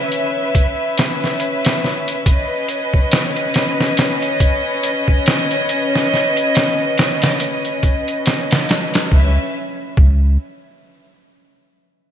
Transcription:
Already playing: violin section C#4 B4 E5
0.12 closed hi-hat
0.55 kick, closed hi-hat
0.98 snare, closed hi-hat
1.24 snare
1.40 closed hi-hat, maracas
1.65 snare, closed hi-hat
1.84 snare
2.08 closed hi-hat
2.26 violin section C#4 D#5, kick, closed hi-hat
2.68 closed hi-hat
2.94 kick
3.12 snare, closed hi-hat, maracas
3.36 closed hi-hat
3.54 snare, closed hi-hat
3.81 snare
3.97 snare, closed hi-hat
4.22 closed hi-hat
4.40 kick, closed hi-hat
4.83 closed hi-hat, maracas
5.08 kick
5.26 snare, closed hi-hat
5.51 closed hi-hat
5.69 closed hi-hat
5.96 snare
6.14 snare
6.37 closed hi-hat
6.54 snare, closed hi-hat, maracas
6.98 snare, closed hi-hat
7.22 snare, closed hi-hat
7.40 closed hi-hat
7.65 closed hi-hat
7.83 kick, closed hi-hat
8.08 closed hi-hat
8.26 snare, closed hi-hat, maracas
8.51 snare, closed hi-hat
8.69 snare, closed hi-hat
8.94 snare, closed hi-hat
9.12 sub bass C#2, violin section C#4 B4 E5, kick
9.97 sub bass C#2, kick

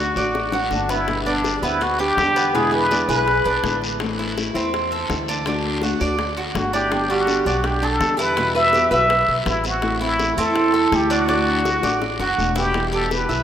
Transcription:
Already playing: upright bass D2, nylon-string guitar D3, cuban tres F#4, muted trumpet F#4
0.00 nylon-string guitar A3 D4 F#4
0.16 upright bass A1, nylon-string guitar A3 D4 F#4, cuban tres D5, short guiro
0.34 muted nylon-string guitar stroke, high bongo, long guiro
0.52 cuban tres F#4, low bongo
0.71 upright bass G1, nylon-string guitar D3 A3 D4 F#4, muted trumpet D4, low bongo, short guiro
0.89 cuban tres B3, nylon-string guitar B3, muted trumpet E4, low bongo, short guiro
1.07 nylon-string guitar B2 D3 G3 B3 G4, high bongo, long guiro
1.26 nylon-string guitar B3, cuban tres D4, muted trumpet D4, high bongo
1.44 nylon-string guitar D3 G3 B3 G4, high bongo, short guiro
1.62 upright bass D2, nylon-string guitar D3 G3 B3 C4 G4, cuban tres B3, muted trumpet E4, high bongo, short guiro
1.81 nylon-string guitar D4, muted trumpet F#4, muted nylon-string guitar stroke, high bongo, long guiro
1.99 nylon-string guitar D4, cuban tres G4, muted trumpet G4, high bongo
2.17 upright bass E2, nylon-string guitar D3 G3 B3 G4, high bongo, low bongo, short guiro
2.36 cuban tres B3, short guiro
2.54 nylon-string guitar B2 D3 G#3 B3 E4, cuban tres B3, muted trumpet G#4, high bongo, long guiro
2.72 nylon-string guitar G#4, muted trumpet B4, high bongo
2.90 nylon-string guitar D3 G#3 B3 E4, cuban tres D4, high bongo, short guiro
3.08 upright bass B1, nylon-string guitar D3 G#3 B3 E4 G#4, cuban tres B4, muted trumpet B4, short guiro
3.27 muted nylon-string guitar stroke, high bongo, long guiro
3.45 upright bass B1, cuban tres D4, high bongo
3.63 upright bass A1, nylon-string guitar D3 G#3 B3 E4, high bongo, low bongo, short guiro
3.82 high bongo, short guiro
4.00 nylon-string guitar E3 A3 C4 E4, high bongo, long guiro
4.19 cuban tres E4, high bongo
4.36 nylon-string guitar E3 A3 C4 E4, high bongo, short guiro
4.54 upright bass E2, nylon-string guitar A3 C4 E4, cuban tres C4, high bongo, short guiro
4.73 muted nylon-string guitar stroke, high bongo, long guiro
4.92 cuban tres A4, high bongo
5.09 upright bass D2, nylon-string guitar E3 A3 C4 E4, high bongo, low bongo, short guiro
5.28 cuban tres D4, short guiro
5.46 nylon-string guitar D3 A3 D4 F#4, cuban tres D4, high bongo, long guiro
5.64 high bongo
5.82 nylon-string guitar D3 A3 D4 F#4, cuban tres F#4, high bongo, short guiro
6.00 upright bass D2, nylon-string guitar A3 D4 F#4, cuban tres D5, short guiro
6.18 muted nylon-string guitar stroke, high bongo, long guiro
6.37 cuban tres F#4, high bongo
6.54 upright bass G1, nylon-string guitar D3 A3 D4 F#4, muted trumpet F#4, high bongo, low bongo, short guiro
6.73 cuban tres D4, nylon-string guitar E4, muted trumpet G4, high bongo, short guiro
6.91 nylon-string guitar D3 G3 B3 D4 G4, muted trumpet G4, high bongo, long guiro
7.10 cuban tres G3, nylon-string guitar D4, muted trumpet F#4, high bongo
7.27 nylon-string guitar D3 G3 B3 G4, high bongo, short guiro
7.45 upright bass B1, nylon-string guitar G3 B3 D4 G4, cuban tres D4, muted trumpet F#4, short guiro
7.64 nylon-string guitar D4, muted trumpet G4, muted nylon-string guitar stroke, high bongo, long guiro
7.82 nylon-string guitar D4, cuban tres A4, muted trumpet A4, high bongo
8.00 upright bass E2, nylon-string guitar D3 G3 B3 G4, high bongo, low bongo, short guiro
8.17 cuban tres E4, nylon-string guitar G4, short guiro
8.21 muted trumpet B4
8.37 nylon-string guitar B2 E3 G3 B3 F#4, cuban tres E4, high bongo, long guiro
8.55 nylon-string guitar B4, muted trumpet E5, high bongo
8.73 nylon-string guitar E3 G3 B3 F#4, cuban tres G4, high bongo, short guiro
8.91 upright bass B1, nylon-string guitar E3 G3 B3 F#4 B4, cuban tres E5, muted trumpet E5, short guiro
9.10 muted nylon-string guitar stroke, high bongo, long guiro
9.28 upright bass B1, high bongo
9.45 upright bass A1, nylon-string guitar E3 G3 B3 F#4, muted trumpet E4, high bongo, low bongo, short guiro
9.64 nylon-string guitar C4, high bongo, short guiro
9.68 muted trumpet F#4
9.82 nylon-string guitar E3 A3 C4 E4, high bongo, long guiro
10.00 nylon-string guitar C4, cuban tres E4, muted trumpet E4, high bongo
10.19 nylon-string guitar E3 A3 C4 E4, high bongo, short guiro
10.36 upright bass E2, nylon-string guitar A3 C4 E4, cuban tres C4, muted trumpet A4, high bongo, short guiro
10.54 muted nylon-string guitar stroke, high bongo, long guiro
10.74 cuban tres A4, high bongo
10.91 upright bass D2, nylon-string guitar E3 A3 C4 E4, high bongo, low bongo, short guiro
10.95 muted trumpet G4
11.10 cuban tres D4, nylon-string guitar D4, muted trumpet F#4, short guiro
11.27 nylon-string guitar D3 A3 D4 F#4, cuban tres D4, high bongo, long guiro
11.47 high bongo
11.64 nylon-string guitar D3 A3 D4 F#4, cuban tres F#4, high bongo, short guiro
11.82 upright bass A1, nylon-string guitar A3 D4 F#4, cuban tres D5, high bongo, short guiro
12.02 muted nylon-string guitar stroke, high bongo, long guiro
12.19 upright bass F#1, cuban tres F#4, muted trumpet F#4, low bongo
12.37 upright bass E1, nylon-string guitar D3 A3 D4 F#4, short guiro
12.55 nylon-string guitar B3, cuban tres E4, muted trumpet G4, low bongo, short guiro
12.73 nylon-string guitar B2 E3 G3 B3 E4, high bongo, long guiro
12.93 cuban tres G4, muted trumpet A4, high bongo
13.10 nylon-string guitar E3 G3 B3 E4, muted trumpet B4, high bongo, short guiro
13.29 upright bass B1, nylon-string guitar E3 G3 B3 E4, cuban tres E5, high bongo, short guiro

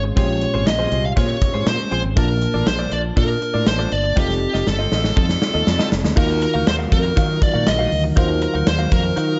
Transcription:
Already playing: fretless electric bass G#1, fm electric piano A#2 G#3 C#4 F4 G#4
0.04 muted clean electric guitar stroke
0.16 fretless electric bass A#1, fm electric piano A#2 G#3 C#4 F4 G4, clean electric guitar C4 F4 G#4 C5, lead electric guitar C#5, kick, closed hi-hat
0.29 muted clean electric guitar stroke
0.42 muted clean electric guitar stroke, closed hi-hat
0.54 fretless electric bass G#1, clean electric guitar C4 F4 G#4 C5
0.66 fretless electric bass A#1, lead electric guitar D#5, muted clean electric guitar stroke, snare, closed hi-hat
0.79 clean electric guitar C4 F4 G#4 C5
0.91 fretless electric bass C2, clean electric guitar C4 F4 G#4 C5, closed hi-hat
1.04 lead electric guitar F5, muted clean electric guitar stroke
1.16 fretless electric bass A#2, clean electric guitar C4 F4 G#4 C5, lead electric guitar C#5, kick, closed hi-hat
1.29 muted clean electric guitar stroke
1.42 muted clean electric guitar stroke, kick, closed hi-hat
1.54 fretless electric bass G#2, clean electric guitar C4 F4 G#4 C5
1.67 fretless electric bass A#2, lead electric guitar C5, muted clean electric guitar stroke, snare, closed hi-hat
1.79 muted clean electric guitar stroke
1.91 fretless electric bass A#1, clean electric guitar C4 F4 G#4 C5, closed hi-hat
2.04 fretless electric bass G#1, muted clean electric guitar stroke
2.16 fretless electric bass A#1, fm electric piano A#2 A#3 D4 F4 A5, clean electric guitar D4 F4 A4 D5, lead electric guitar A#4, kick, closed hi-hat
2.29 muted clean electric guitar stroke
2.41 muted clean electric guitar stroke, closed hi-hat
2.54 fretless electric bass A1, clean electric guitar D4 F4 A4 D5
2.67 fretless electric bass A#1, lead electric guitar C5, muted clean electric guitar stroke, snare, closed hi-hat
2.79 clean electric guitar D4 F4 A4 D5
2.91 fretless electric bass A#1, clean electric guitar D4 F4 A4 D5, lead electric guitar D5, closed hi-hat
3.04 muted clean electric guitar stroke
3.16 fretless electric bass A#2, clean electric guitar D4 F4 A4 D5, lead electric guitar A#4, kick, closed hi-hat
3.29 muted clean electric guitar stroke
3.41 muted clean electric guitar stroke, closed hi-hat
3.54 fretless electric bass A2, clean electric guitar D4 F4 A4 D5
3.67 fretless electric bass A1, lead electric guitar C5, snare, closed hi-hat
3.79 clean electric guitar D4 F4 A4 D5
3.91 fretless electric bass G1, lead electric guitar D5, muted clean electric guitar stroke, closed hi-hat
4.04 muted clean electric guitar stroke
4.16 fretless electric bass F1, fm electric piano C4 D#4 F4 A4, clean electric guitar C4 F4 A4 D#5, lead electric guitar G4, kick, snare
4.29 muted clean electric guitar stroke, snare
4.41 muted clean electric guitar stroke
4.54 fretless electric bass F1, clean electric guitar C4 F4 A4 D#5, snare
4.66 fretless electric bass G1, lead electric guitar A4, muted clean electric guitar stroke, snare
4.79 clean electric guitar C4 F4 A4 D#5
4.91 fretless electric bass A1, clean electric guitar C4 F4 A4 D#5, snare
5.04 muted clean electric guitar stroke, snare
5.16 fretless electric bass F2, clean electric guitar C4 F4 A4 D#5, lead electric guitar A4, kick
5.29 muted clean electric guitar stroke, snare
5.41 muted clean electric guitar stroke, snare
5.54 fretless electric bass D#2, clean electric guitar C4 F4 A4 D#5
5.66 fretless electric bass F2, muted clean electric guitar stroke, snare
5.79 clean electric guitar C4 F4 A4 D#5, snare
5.91 fretless electric bass F1, muted clean electric guitar stroke, snare
6.04 fretless electric bass D2, muted clean electric guitar stroke, snare
6.16 fretless electric bass D#2, ambient pad D#3 F#3 F5, fm electric piano D#3 D#4 F4 F#4 A#4, clean electric guitar D#4 F#4 A#4 F5, lead electric guitar A#4, kick, crash
6.29 muted clean electric guitar stroke
6.41 lead electric guitar A#4, muted clean electric guitar stroke, closed hi-hat
6.54 fretless electric bass D2, clean electric guitar D#4 F#4 A#4 F5
6.66 fretless electric bass D#2, lead electric guitar C5, muted clean electric guitar stroke, snare, closed hi-hat
6.79 clean electric guitar D#4 F#4 A#4 F5
6.91 fretless electric bass F2, clean electric guitar D#4 F#4 A#4 F5, lead electric guitar A#4, kick, closed hi-hat
7.04 muted clean electric guitar stroke
7.16 fretless electric bass D#3, clean electric guitar D#4 F#4 A#4 F5, kick, closed hi-hat
7.29 muted clean electric guitar stroke
7.41 lead electric guitar D5, muted clean electric guitar stroke, kick, closed hi-hat
7.54 fretless electric bass A#2, clean electric guitar D#4 F#4 A#4 F5
7.66 fretless electric bass A#1, lead electric guitar D#5, muted clean electric guitar stroke, snare, closed hi-hat
7.79 clean electric guitar D#4 F#4 A#4 F5
7.92 fretless electric bass D2, muted clean electric guitar stroke, open hi-hat
8.04 muted clean electric guitar stroke
8.16 fretless electric bass D#2, fm electric piano D#3 D#4 F4 F#4 C5, clean electric guitar D#4 F#4 A#4 F5, lead electric guitar A#4, kick, closed hi-hat
8.29 muted clean electric guitar stroke
8.41 lead electric guitar A#4, muted clean electric guitar stroke, closed hi-hat
8.54 fretless electric bass D2, clean electric guitar D#4 F#4 A#4 F5
8.66 fretless electric bass D#2, lead electric guitar C5, muted clean electric guitar stroke, snare, closed hi-hat
8.79 clean electric guitar D#4 F#4 A#4 F5
8.91 fretless electric bass F2, clean electric guitar D#4 F#4 A#4 F5, lead electric guitar A#4, kick, closed hi-hat
9.04 muted clean electric guitar stroke
9.16 fretless electric bass D#3, clean electric guitar D#4 F#4 A#4 F5, closed hi-hat
9.29 muted clean electric guitar stroke

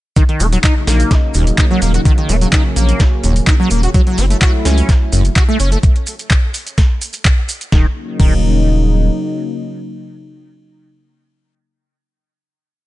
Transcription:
0.16 analog synth pad C#3 F#3 A#3 D#4, acid bass D#3, kick, closed hi-hat, maracas
0.29 acid bass D#3, closed hi-hat
0.40 sub bass D#1, acid bass A#3, open hi-hat, maracas
0.53 acid bass F#3, closed hi-hat, maracas
0.64 acid bass D#4, kick, clap, closed hi-hat, maracas
0.87 sub bass A#1, acid bass A#3, snare, open hi-hat, maracas
1.00 closed hi-hat, maracas
1.11 acid bass F#4, kick, snare, closed hi-hat, maracas
1.34 sub bass D#1, acid bass D#2, open hi-hat, maracas
1.47 closed hi-hat, maracas
1.58 acid bass D#4, kick, clap, closed hi-hat, maracas
1.71 acid bass F#3
1.82 sub bass D#1, acid bass A#3, open hi-hat, maracas
1.94 acid bass F#4, closed hi-hat, maracas
2.05 acid bass D#3, analog synth pad C#4, kick, closed hi-hat, maracas
2.18 acid bass D#3, closed hi-hat
2.29 sub bass D#1, acid bass A#3, open hi-hat, maracas
2.41 acid bass F#3, closed hi-hat, maracas
2.53 acid bass D#4, kick, clap, closed hi-hat, maracas
2.76 sub bass A#1, acid bass A#3, open hi-hat, maracas
2.89 closed hi-hat, maracas
3.00 acid bass F#4, kick, snare, closed hi-hat, maracas
3.24 sub bass D#1, acid bass D#2, open hi-hat, maracas
3.36 closed hi-hat, maracas
3.47 acid bass D#4, kick, clap, closed hi-hat, maracas
3.60 acid bass F#3
3.70 sub bass D#1, acid bass A#3, open hi-hat, maracas
3.83 acid bass F#4, closed hi-hat, maracas
3.94 analog synth pad F#3 A3 E4, acid bass F#3, kick, closed hi-hat, maracas
4.07 acid bass F#3, closed hi-hat
4.18 sub bass F#1, acid bass C#4, open hi-hat, maracas
4.30 acid bass A3, closed hi-hat, maracas
4.41 acid bass F#4, kick, clap, closed hi-hat, maracas
4.65 sub bass C#2, acid bass C#4, snare, open hi-hat, maracas
4.78 closed hi-hat, maracas
4.89 acid bass A3, kick, snare, closed hi-hat, maracas
5.12 sub bass F#1, acid bass F#2, open hi-hat, maracas
5.25 closed hi-hat, maracas
5.36 acid bass F#4, kick, clap, closed hi-hat, maracas
5.49 acid bass A3
5.60 sub bass F#1, acid bass C#4, open hi-hat, maracas
5.72 acid bass A3, closed hi-hat, maracas
5.83 kick, closed hi-hat, maracas
5.96 closed hi-hat
6.06 open hi-hat, maracas
6.19 closed hi-hat, maracas
6.30 kick, clap, closed hi-hat, maracas
6.54 open hi-hat, maracas
6.67 closed hi-hat, maracas
6.78 kick, snare, closed hi-hat, maracas
7.01 open hi-hat, maracas
7.13 closed hi-hat, maracas
7.25 kick, clap, closed hi-hat, maracas
7.49 open hi-hat, maracas
7.61 closed hi-hat, maracas
7.72 sub bass D#1, analog synth pad C#3 F#3 A#3 D#4, acid bass D#3, kick, snare
8.19 sub bass D#1, acid bass D#3, kick, crash

